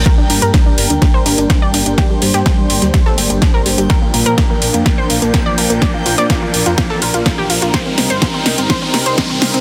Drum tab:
RD |x-x-x-x-x-x-x-x-|x-x-x-x-x-x-x---|x-x-x-x-x-x-x-x-|x-x-x-x-x-x-x---|
HH |x-oxx-oxx-oxx-ox|x-oxx-oxx-oxx-ox|x-oxx-oxx-oxx-ox|x-oxx-oxx-oxx-ox|
SD |o---o---o---o---|o--oo--ooo--o---|o---o---o---o---|o--oo--ooo--o---|
BD |o---o---o---o---|o---o---o---o---|o---o---o---o---|o---o---o---o---|

RD |x-x-x-x-x-x-x-x-|
HH |x-oxx-oxx-oxx-ox|
SD |o-o-o-o-o-o-o-o-|
BD |o---o---o---o---|